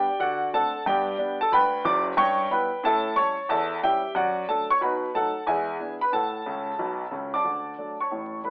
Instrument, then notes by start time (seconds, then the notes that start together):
grand piano
Already playing: G4 D5 G5
0.20 D3 F#4 D5 F#5
0.53 A3 C4 D4 A4 F#5 A5
0.86 G2 B3 G4 D5 G5
1.18 G3 B3 D4
1.41 A4 A5
1.52 D2 B4 G5 B5
1.85 F#1 F#2 D5 D6
2.17 G2 C#5 G5 C#6
2.50 G3 B3 E4 B4 G5 B5
2.83 A2 C#4 A4 E5 A5
3.15 G3 C#4 E4 C#5 A5 C#6
3.49 E2 A4 E5 A5
3.83 G3 C#4 E4 G4 E5 G5
4.15 F#2 F#4 D5 F#5
4.48 F#3 A3 D4 A4 A5
4.70 C#5 C#6
4.81 B2 D#4 B4 F#5 B5
5.14 F#3 A3 D#4 A4 F#5 A5
5.47 E2 G#3 G#4 E5 G#5
5.79 E3 B3 D4
6.01 B4 B5
6.12 A2 A4 F#5 A5
6.46 C#2 C#3
6.79 B1 B2
7.11 C#2 C#3
7.34 D5 A5 D6
7.44 D2 D3
7.78 F#3 A3 D4
8.00 C#5 A5 C#6
8.11 A1 A2
8.43 G3 A3 E4 B4 B5